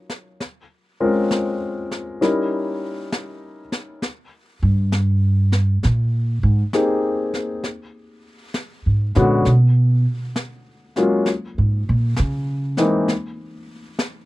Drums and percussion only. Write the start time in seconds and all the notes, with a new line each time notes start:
0.09 snare
0.40 brush sweep, snare
1.31 snare
1.91 snare
2.22 brush sweep, snare
3.12 snare
3.72 snare
4.02 brush sweep, snare
4.92 snare
5.52 snare
5.83 brush sweep, snare
6.73 snare
7.34 snare
7.64 brush sweep, snare
8.54 snare
9.15 snare
9.45 brush sweep, snare
10.36 snare
10.96 snare
11.26 brush sweep, snare
12.16 snare
12.77 snare
13.08 brush sweep, snare
13.99 snare